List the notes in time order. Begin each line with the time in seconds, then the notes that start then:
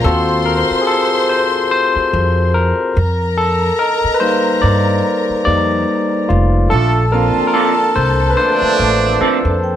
0.04 D#2 C4 F4 F#4 A4 C5 C6
0.46 A#4
0.71 muted upright bass stroke
0.82 G#4
0.87 A4
1.29 C5
1.71 C5
1.96 muted upright bass stroke
2.13 F2
2.54 A#4
2.96 F2 A#4 A#5
3.38 A4
3.79 A#4 D#5
4.04 muted upright bass stroke
4.14 B4
4.20 G3 A#3 D#4 C5 F5
4.62 G2 D5
5.30 muted upright bass stroke
5.45 F2 G3 A#3 D#4 D5
6.29 F1 F4
6.70 A#1 A3 D4 F4 A4 A5
7.12 F3 A#3 C4 D4 F4 A#4 A5
7.37 muted upright bass stroke
7.47 A#4
7.54 C4 F4 A4 D5
7.96 C2 C5
8.30 B4
8.37 D3 F3 A3 D4 C5
8.62 muted upright bass stroke
8.79 A1
9.21 C4 F4 A4 D5, muted upright bass stroke
9.45 F2
9.64 G5